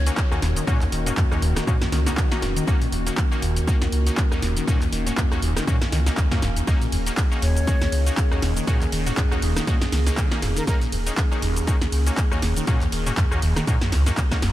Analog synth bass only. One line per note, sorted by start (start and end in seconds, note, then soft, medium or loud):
0.00 0.10 C#2 medium
0.42 0.60 D#1 loud
0.92 1.10 D#1 loud
1.42 1.60 D#1 medium
1.92 2.10 C#2 medium
2.42 2.60 D#1 loud
2.92 3.10 D#1 loud
3.42 3.60 D#1 medium
3.92 4.10 C#2 medium
4.42 4.60 D#1 loud
4.92 5.10 D#1 loud
5.42 5.60 D#1 medium
5.92 6.10 C#2 medium
6.42 6.60 D#1 medium
6.92 7.10 D#1 loud
7.42 7.60 D#1 medium
7.92 8.10 C#2 medium
8.42 8.60 D#1 loud
8.92 9.10 D#1 loud
9.42 9.60 D#1 medium
9.92 10.10 C#2 medium
10.42 10.60 D#1 loud
10.92 11.10 D#1 loud
11.42 11.60 D#1 medium
11.92 12.10 C#2 medium
12.42 12.60 D#1 loud
12.92 13.10 D#1 loud
13.42 13.60 D#1 medium
13.92 14.10 C#2 medium
14.42 14.52 D#1 medium